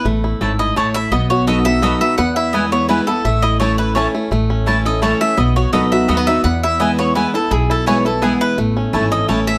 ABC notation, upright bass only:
X:1
M:3/4
L:1/8
Q:1/4=169
K:Alyd
V:1 name="Upright bass" clef=bass
A,,,2 G,,,2 A,,,2 | B,,,6 | E,,6 | A,,,6 |
A,,,6 | B,,,2 C,,2 D,,2 | E,,6 | B,,,6 |
A,,,2 G,,,2 A,,,2 |]